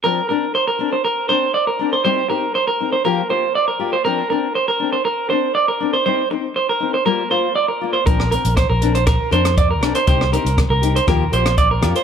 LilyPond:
<<
  \new Staff \with { instrumentName = "Clean electric guitar" } { \time 4/4 \key bes \major \tempo 4 = 120 bes'8 bes'8 c''16 bes'8 c''16 bes'8 c''8 d''16 bes'8 c''16 | c''8 bes'8 c''16 bes'8 c''16 bes'8 c''8 d''16 bes'8 c''16 | bes'8 bes'8 c''16 bes'8 c''16 bes'8 c''8 d''16 bes'8 c''16 | c''8 r8 c''16 bes'8 c''16 bes'8 c''8 d''16 bes'8 c''16 |
bes'8 bes'8 c''16 bes'8 c''16 bes'8 c''8 d''16 bes'8 c''16 | c''8 bes'8 r16 bes'8 c''16 bes'8 c''8 d''16 bes'8 c''16 | }
  \new Staff \with { instrumentName = "Steel-string acoustic guitar" } { \time 4/4 \key bes \major <f c' d' bes'>8 <c' d' bes'>8 r8 <c' d' bes'>8 r8 <c' d' bes'>8 r8 <c' d' bes'>8 | <g c' ees' g'>8 <c' ees' g'>8 r8 <c' ees'>8 <f bes f' g'>8 <bes f' g'>8 r8 <bes f' g'>8 | <f c' d'>8 <c' d'>8 r8 <c' d'>8 r8 <c' d'>8 r8 <c' d'>8 | <g c' ees'>8 <c' ees'>8 r8 <c' ees'>8 <g bes f'>8 <bes f'>8 r8 <bes f'>8 |
<f c' d' bes'>8 <c' bes'>8 r8 <c' d' bes'>8 r8 <c' d' bes'>8 r8 <c' d' bes'>8 | <c' ees' g'>8 <c' ees' g'>8 r8 <c' ees' g'>8 <f bes f' g'>8 <bes f' g'>8 r8 <bes f' g'>8 | }
  \new Staff \with { instrumentName = "Fingered electric bass" } { \clef bass \time 4/4 \key bes \major r1 | r1 | r1 | r1 |
bes,,8. bes,,8 bes,,4~ bes,,16 f,4 ces,16 r16 | c,8. c,8 c,8. ees,8 bes,,4 f,16 r16 | }
  \new DrumStaff \with { instrumentName = "Drums" } \drummode { \time 4/4 r4 r4 r4 r4 | r4 r4 r4 r4 | r4 r4 r4 r4 | r4 r4 r4 r4 |
<hh bd>16 ss16 hh16 hh16 <hh bd ss>8 hh16 hh16 <hh bd ss>8 hh16 <hh ss>16 <hh bd>8 <hh ss>16 hh16 | <hh bd>16 ss16 hh16 hh16 <hh bd ss>8 hh16 hh16 <hh bd ss>8 hh16 <hh ss>16 <hh bd>8 <hh ss>16 hh16 | }
>>